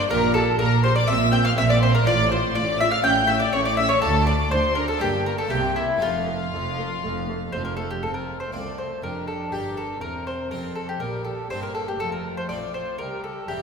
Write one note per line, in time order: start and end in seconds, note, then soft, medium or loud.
0.07 0.54 A#1 loud
0.07 0.54 A#2 loud
0.07 1.04 A#3 medium
0.07 1.04 D4 medium
0.07 0.17 G4 medium
0.07 1.05 G4 medium
0.07 0.34 A#4 loud
0.07 0.33 A#4 loud
0.11 0.51 A#2 medium
0.11 0.35 A#5 loud
0.34 0.42 G4 medium
0.34 0.57 A4 loud
0.34 0.59 A4 loud
0.34 0.44 A5 loud
0.59 1.02 A#1 medium
0.59 1.03 A#2 medium
0.59 1.00 A#2 medium
0.59 0.67 G4 medium
0.59 0.82 A#4 loud
0.59 0.83 A#4 loud
0.59 0.83 A#5 loud
0.83 0.91 G4 medium
0.83 0.96 C5 loud
0.83 0.95 C5 medium
0.83 0.96 C6 loud
0.96 1.07 D5 loud
0.96 1.08 D5 medium
0.96 1.08 D6 loud
1.06 1.52 A#1 loud
1.06 1.49 A#2 medium
1.06 1.52 A#2 loud
1.06 2.02 C4 medium
1.06 1.16 C4 medium
1.06 2.03 G4 medium
1.06 1.31 E5 loud
1.06 1.33 E5 loud
1.06 1.33 E6 loud
1.32 1.40 C4 medium
1.32 1.37 G5 loud
1.32 1.44 G5 medium
1.32 1.45 G6 loud
1.44 1.49 F5 medium
1.44 1.56 F5 loud
1.44 1.51 F6 loud
1.56 2.01 A#1 medium
1.56 2.01 A#2 loud
1.56 1.98 A#2 medium
1.56 1.64 C4 medium
1.56 1.69 E5 loud
1.56 1.63 E6 loud
1.69 1.74 D5 loud
1.69 1.81 D5 loud
1.69 1.82 D6 loud
1.81 1.89 C4 medium
1.81 1.93 C5 loud
1.81 1.94 C5 medium
1.81 1.94 C6 loud
1.93 2.06 A#4 medium
1.93 2.06 A#4 loud
1.93 2.07 A#5 loud
2.02 2.49 A1 loud
2.02 2.99 A3 medium
2.02 3.00 C4 medium
2.02 3.01 F4 medium
2.02 2.30 D5 loud
2.02 2.31 D6 loud
2.06 2.49 A2 loud
2.06 2.47 A2 medium
2.06 2.15 F4 medium
2.06 2.29 D5 loud
2.30 2.38 F4 medium
2.30 2.54 C5 loud
2.30 2.54 C5 medium
2.30 2.55 C6 loud
2.54 2.98 A1 medium
2.54 2.95 A2 medium
2.54 2.99 A2 medium
2.54 2.63 F4 medium
2.54 2.79 D5 loud
2.54 2.78 D5 loud
2.54 2.79 D6 loud
2.80 2.88 F4 medium
2.80 2.85 E5 loud
2.80 2.91 E5 medium
2.80 2.92 E6 loud
2.92 3.03 F5 medium
2.92 3.04 F5 loud
2.92 2.97 F6 loud
3.00 3.47 A1 loud
3.00 3.47 A2 loud
3.00 3.97 A3 medium
3.00 3.98 C#4 medium
3.00 3.11 C#4 medium
3.00 3.99 E4 medium
3.00 3.27 G5 loud
3.00 3.28 G6 loud
3.05 3.45 A2 medium
3.05 3.29 G5 loud
3.27 3.37 C#4 medium
3.27 3.39 E5 medium
3.27 3.41 E5 loud
3.27 3.41 E6 loud
3.40 3.52 D5 medium
3.40 3.53 D5 loud
3.40 3.45 D6 loud
3.53 3.97 A1 medium
3.53 3.97 A2 loud
3.53 3.94 A2 medium
3.53 3.62 C#4 medium
3.53 3.64 C#5 medium
3.53 3.66 C#5 loud
3.53 3.65 C#6 loud
3.65 3.77 D5 medium
3.65 3.78 D5 loud
3.65 3.78 D6 loud
3.77 3.86 C#4 medium
3.77 3.89 E5 medium
3.77 3.90 E5 loud
3.77 3.90 E6 loud
3.89 4.01 C#5 medium
3.89 4.02 C#5 loud
3.89 4.03 C#6 loud
3.98 4.96 A3 medium
3.98 4.97 D4 medium
3.98 4.10 D4 medium
3.98 4.97 F4 medium
3.98 4.25 A4 loud
3.98 4.26 A5 loud
4.02 4.46 D2 loud
4.02 4.43 D2 medium
4.02 4.26 A4 loud
4.27 4.35 D4 medium
4.27 4.50 D5 medium
4.27 4.35 D5 loud
4.27 4.52 D6 loud
4.51 4.95 D2 medium
4.51 4.92 D2 medium
4.51 4.95 D2 medium
4.51 4.59 D4 medium
4.51 4.74 C5 medium
4.51 4.60 C5 medium
4.51 4.76 C6 loud
4.75 4.84 D4 medium
4.75 4.87 A#4 medium
4.75 4.88 A#4 medium
4.75 4.89 A#5 loud
4.88 5.00 A4 medium
4.88 5.01 A4 medium
4.88 5.01 A5 loud
4.97 5.45 A#3 medium
4.97 5.09 A#3 medium
4.97 5.48 D4 medium
4.97 5.48 F4 medium
4.97 5.25 G5 loud
5.01 5.45 G1 medium
5.01 5.42 G2 medium
5.01 5.45 G2 medium
5.01 5.24 G4 medium
5.01 5.26 G4 medium
5.26 5.34 A#3 medium
5.26 5.38 A#4 loud
5.26 5.38 A#4 medium
5.26 5.31 A#5 medium
5.38 5.50 A4 medium
5.38 5.51 A5 medium
5.46 5.97 A#3 medium
5.46 5.97 C4 medium
5.46 5.99 E4 medium
5.46 5.74 G4 medium
5.46 5.75 G4 medium
5.50 5.95 C2 medium
5.50 5.92 C3 medium
5.50 5.95 C3 medium
5.50 5.59 A#3 medium
5.50 5.76 G5 loud
5.75 5.84 A#3 medium
5.75 6.01 E4 medium
5.75 5.99 E4 medium
5.75 5.83 E5 medium
5.97 7.97 A3 medium
5.97 7.98 C4 medium
5.97 7.98 F4 medium
5.97 7.78 F4 loud
6.01 6.46 F1 medium
6.01 6.43 F2 medium
6.01 6.46 F2 medium
6.01 6.09 A3 medium
6.01 7.74 F4 medium
6.01 7.74 F5 loud
6.27 6.35 A3 medium
6.52 6.96 F1 medium
6.52 6.96 F2 medium
6.52 6.93 F2 medium
6.52 6.60 A3 medium
6.77 6.85 A3 medium
7.02 7.47 F1 medium
7.02 7.44 F2 medium
7.02 7.47 F2 medium
7.02 7.11 A3 medium
7.28 7.36 A3 medium
7.52 7.97 F1 medium
7.52 7.97 F2 medium
7.52 7.94 F2 medium
7.52 7.61 A3 medium
7.52 7.64 C5 medium
7.65 7.76 A#4 medium
7.77 7.86 A3 medium
7.77 7.89 A4 medium
7.90 8.02 G4 medium
8.02 8.49 F1 medium
8.02 8.49 F2 medium
8.02 8.49 F2 soft
8.02 8.49 C4 soft
8.02 8.49 F4 soft
8.02 8.14 A4 medium
8.02 8.49 A5 soft
8.14 8.38 A#4 medium
8.40 8.52 C5 medium
8.52 8.98 C2 soft
8.52 8.99 C2 soft
8.52 9.03 A3 soft
8.52 8.88 C4 soft
8.52 8.89 F4 soft
8.52 9.01 A4 soft
8.52 8.76 D5 medium
8.52 9.01 A5 soft
8.78 9.01 C5 medium
9.02 9.49 F1 medium
9.02 9.49 F2 soft
9.02 9.48 F2 soft
9.02 10.01 D4 soft
9.02 9.51 G4 soft
9.02 9.26 A#4 medium
9.02 9.51 A#5 soft
9.27 9.51 A4 medium
9.51 9.98 G1 soft
9.51 9.98 G2 soft
9.51 9.88 D4 soft
9.51 9.75 G4 medium
9.51 9.88 G4 soft
9.51 10.49 A#4 soft
9.51 10.01 A#5 soft
9.77 10.00 A4 medium
10.01 10.48 E1 medium
10.01 10.48 E2 medium
10.01 10.47 E2 soft
10.01 10.99 C4 soft
10.01 10.25 A#4 medium
10.01 10.99 G5 soft
10.27 10.50 C5 medium
10.51 10.97 F1 soft
10.51 10.97 F2 soft
10.51 10.88 C4 soft
10.51 10.88 G4 soft
10.51 11.01 A4 soft
10.51 10.74 A#4 medium
10.76 10.87 A4 medium
10.89 11.00 G4 medium
11.00 11.47 A#1 medium
11.00 11.47 A#2 medium
11.00 11.46 A#2 soft
11.00 11.50 G3 soft
11.00 11.99 G4 soft
11.00 11.23 A#4 medium
11.00 11.49 G5 soft
11.25 11.48 A4 soft
11.50 11.96 G1 soft
11.50 11.96 G2 medium
11.50 11.96 G2 soft
11.50 11.98 A#3 soft
11.50 11.86 C4 soft
11.50 11.86 G4 soft
11.50 11.62 C5 medium
11.50 11.98 G5 soft
11.63 11.74 A#4 medium
11.75 11.86 A4 medium
11.88 11.99 G4 medium
11.99 12.45 F1 medium
11.99 12.45 F2 medium
11.99 12.45 F2 soft
11.99 12.98 A3 soft
11.99 12.47 F4 soft
11.99 12.11 A4 medium
11.99 12.49 A5 soft
12.12 12.35 A#4 medium
12.37 12.48 C5 medium
12.48 12.95 A1 soft
12.48 12.95 A2 soft
12.48 12.85 C4 soft
12.48 12.97 F4 soft
12.48 12.85 F4 soft
12.48 12.72 D5 medium
12.48 12.98 F5 soft
12.74 12.97 C5 medium
12.98 13.44 C2 medium
12.98 13.45 C2 medium
12.98 13.44 C2 soft
12.98 13.47 G3 soft
12.98 13.47 G4 soft
12.98 13.21 A#4 medium
12.98 13.62 A#5 soft
13.24 13.46 A4 medium
13.48 13.62 E1 medium
13.48 13.62 E2 medium
13.48 13.62 E2 soft
13.48 13.62 G3 soft
13.48 13.62 C4 soft
13.48 13.62 E4 soft
13.48 13.62 G4 medium
13.48 13.62 G4 soft